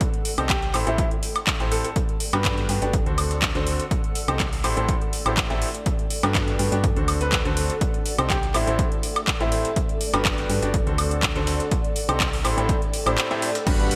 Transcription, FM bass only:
0.38 0.72 C2 medium
0.74 0.84 A1 medium
0.87 1.01 A1 loud
1.60 1.85 A1 medium
2.33 2.67 G2 medium
2.69 2.79 G2 medium
2.82 3.04 G1 loud
3.06 3.53 D2 loud
3.55 3.80 D2 loud
4.28 4.62 C2 loud
4.64 4.75 A1 medium
4.77 4.91 A1 loud
5.26 5.48 A1 loud
5.50 5.64 A1 loud
6.23 6.57 G2 medium
6.59 6.70 G2 medium
6.72 6.94 G2 loud
6.97 7.43 D2 loud
7.45 7.70 D2 medium
8.18 8.52 C2 medium
8.54 8.65 A1 loud
8.67 8.81 A1 loud
9.40 9.65 A1 medium
10.14 10.47 G1 loud
10.49 10.60 G2 loud
10.62 10.84 G1 loud
10.87 11.33 D2 loud
11.35 11.60 D2 medium
12.09 12.42 C2 loud
12.44 12.55 A1 medium
12.57 12.71 A1 loud
13.06 13.18 A1 loud
13.67 13.96 G1 loud

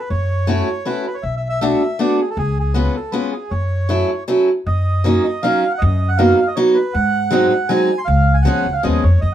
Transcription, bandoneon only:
0.10 0.88 C#5 medium
0.86 1.06 B4 medium
1.07 1.16 B4 medium
1.14 1.24 C#5 medium
1.23 1.35 E5 medium
1.37 1.48 E5 medium
1.49 1.60 E5 loud
1.61 2.01 E5 medium
2.00 2.20 D5 medium
2.21 2.29 G#4 medium
2.30 2.38 A4 medium
2.38 2.58 G#4 loud
2.60 2.77 G#4 medium
2.74 2.95 B4 medium
2.96 3.14 A4 medium
3.12 3.31 B4 medium
3.32 3.51 G#4 medium
3.51 4.24 C#5 medium
4.67 5.23 D#5 medium
5.24 5.43 D#5 medium
5.43 5.73 F5 medium
5.71 5.81 F#5 medium
5.79 6.09 D#5 medium
6.09 6.19 F#5 medium
6.17 6.48 F5 medium
6.47 6.57 D#5 medium
6.56 6.76 C#5 medium
6.74 6.94 B4 medium
6.94 7.48 F#5 loud
7.49 7.69 F#5 medium
7.69 7.99 G#5 loud
7.98 8.07 C6 loud
8.05 8.36 F5 medium
8.34 8.45 G#5 medium
8.42 8.74 F#5 medium
8.73 8.83 F5 medium
8.84 9.04 D#5 medium
9.04 9.20 C#5 medium
9.21 9.34 D#5 loud

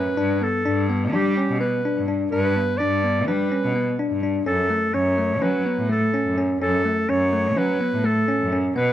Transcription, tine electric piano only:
0.00 0.14 C#4 medium
0.17 0.38 D4 medium
0.42 0.62 B3 medium
0.65 0.86 D4 medium
0.90 1.10 B3 medium
1.13 1.33 D4 medium
1.38 1.57 C#4 medium
1.61 1.81 B3 medium
1.85 2.05 D4 medium
2.08 2.28 D4 medium
2.33 2.53 D4 medium
2.56 2.76 B3 medium
2.80 3.00 D4 medium
3.04 3.24 B3 medium
3.28 3.48 D4 medium
3.52 3.72 C#4 medium
3.75 3.95 B3 medium
3.99 4.19 D4 medium
4.23 4.43 D4 medium
4.46 4.67 C#4 medium
4.70 4.91 A3 medium
4.94 5.15 C#4 medium
5.18 5.38 A3 soft
5.42 5.62 C#4 medium
5.66 5.86 B3 medium
5.90 6.10 A3 medium
6.14 6.34 C#4 medium
6.37 6.58 C#4 medium
6.62 6.82 C#4 medium
6.85 7.05 A3 medium
7.09 7.29 C#4 medium
7.33 7.53 A3 medium
7.57 7.77 C#4 medium
7.81 8.01 B3 medium
8.04 8.24 A3 medium
8.28 8.49 C#4 medium
8.52 8.73 C#4 medium
8.76 8.93 B3 medium

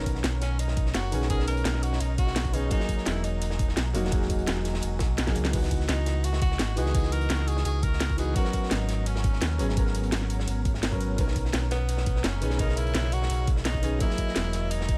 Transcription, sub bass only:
0.00 0.23 B1 medium
0.24 0.93 B1 loud
0.95 1.14 F#1 loud
1.12 1.64 B1 loud
1.65 1.99 B1 loud
2.00 2.70 B1 medium
3.06 3.76 E1 loud
3.77 3.96 B1 loud
3.94 4.46 E1 loud
4.48 4.81 E1 loud
4.83 5.02 E1 medium
5.00 5.16 B1 loud
5.18 5.34 B1 medium
5.36 5.87 C#2 loud
5.89 6.58 C#2 loud
6.59 6.78 G#1 loud
6.77 7.29 C#2 loud
7.30 7.64 C#2 loud
7.65 8.34 C#2 medium
8.71 9.40 G#1 loud
9.42 9.61 D#2 loud
9.59 10.11 G#1 loud
10.12 10.46 G#1 loud
10.47 10.91 G#1 medium
10.92 11.20 G#1 medium
11.18 11.52 B1 medium
11.54 12.23 B1 loud
12.24 12.43 F#1 loud
12.42 12.93 B1 loud
12.95 13.29 B1 loud
13.30 13.99 B1 medium
14.36 14.98 E1 loud

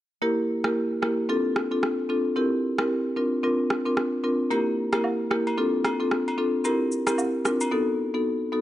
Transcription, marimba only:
0.22 0.60 A#3 medium
0.22 0.61 E4 medium
0.22 0.61 G4 medium
0.22 0.61 A#4 medium
0.64 0.83 A#3 medium
0.64 0.83 E4 medium
0.64 0.84 G4 medium
0.64 0.84 A#4 medium
1.02 1.24 A#3 medium
1.02 1.24 E4 medium
1.02 1.24 G4 medium
1.02 1.24 A#4 medium
1.29 1.68 C4 medium
1.29 1.68 D4 medium
1.29 1.68 F4 medium
1.29 1.68 A4 loud
1.71 1.90 C4 medium
1.71 1.91 D4 medium
1.71 1.91 F4 medium
1.71 1.91 A4 medium
2.09 2.31 C4 medium
2.09 2.31 D4 medium
2.09 2.31 F4 medium
2.09 2.31 A4 medium
2.36 2.75 C4 medium
2.36 2.75 E4 medium
2.36 2.75 G4 medium
2.36 2.75 A#4 medium
2.78 2.98 C4 medium
2.78 2.98 E4 medium
2.78 2.98 G4 medium
2.78 2.98 A#4 medium
3.17 3.38 C4 medium
3.17 3.38 D4 medium
3.17 3.38 F4 medium
3.17 3.38 A#4 medium
3.43 3.82 C4 medium
3.43 3.82 D4 medium
3.43 3.82 F4 medium
3.43 3.82 A#4 loud
3.85 4.05 C4 medium
3.85 4.05 D4 medium
3.85 4.05 F4 medium
3.85 4.05 A#4 medium
4.24 4.45 C4 medium
4.24 4.45 D4 medium
4.24 4.45 F4 medium
4.24 4.45 A#4 medium
4.50 4.89 A#3 medium
4.50 4.89 E4 medium
4.50 4.89 G4 medium
4.50 4.89 A#4 loud
4.93 5.12 A#3 medium
4.93 5.12 E4 medium
4.93 5.12 G4 medium
4.93 5.12 A#4 medium
5.31 5.52 A#3 medium
5.31 5.52 E4 medium
5.31 5.52 G4 medium
5.31 5.52 A#4 medium
5.58 5.96 C4 medium
5.58 5.96 D4 medium
5.58 5.96 F4 medium
5.58 5.97 A4 loud
6.00 6.19 C4 medium
6.00 6.19 D4 medium
6.00 6.19 F4 medium
6.00 6.19 A4 medium
6.38 6.59 C4 medium
6.38 6.59 D4 medium
6.38 6.59 F4 medium
6.38 6.59 A4 medium
6.64 7.03 C4 medium
6.64 7.03 E4 medium
6.64 7.03 G4 medium
6.64 7.04 A#4 medium
7.07 7.26 C4 medium
7.07 7.26 E4 medium
7.07 7.26 G4 medium
7.07 7.26 A#4 medium
7.45 7.66 C4 medium
7.45 7.66 D4 medium
7.45 7.66 F4 medium
7.45 7.67 A#4 medium
7.71 8.10 B3 medium
7.71 8.11 D#4 medium
7.71 8.11 F#4 medium
7.71 8.11 A4 loud
8.14 8.33 B3 medium
8.14 8.33 D#4 medium
8.14 8.33 F#4 medium
8.14 8.34 A4 medium
8.52 8.61 B3 medium
8.52 8.61 D#4 medium
8.52 8.61 F#4 medium
8.52 8.61 A4 medium

